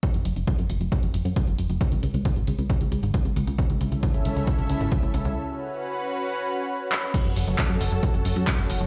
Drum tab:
CC |----------------|----------------|----------------|----------------|
HH |xxxxxxxxxxxxxxxx|xxxxxxxxxxxxxxxx|xxxxxxxxxxxxxxxx|----------------|
CP |----------------|----------------|----------------|--------------x-|
BD |o---o---o---o---|o---o---o---o---|o---o---o---o---|----------------|

CC |x---------------|
HH |xxoxxxoxxxoxxxox|
CP |----x-------x---|
BD |o---o---o---o---|